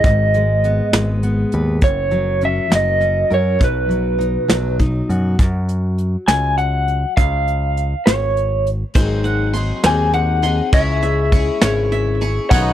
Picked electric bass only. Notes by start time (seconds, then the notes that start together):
0.04 G#1
0.93 G#1
1.54 D#2
1.82 F#1
2.73 F#1
3.31 F#2
3.61 B1
4.51 B1
5.09 F#2
5.39 F#2
6.28 C#2
7.18 C#2
8.07 G#1
8.96 G#1
9.84 D#2
10.73 C#2
11.63 G#1
12.51 B1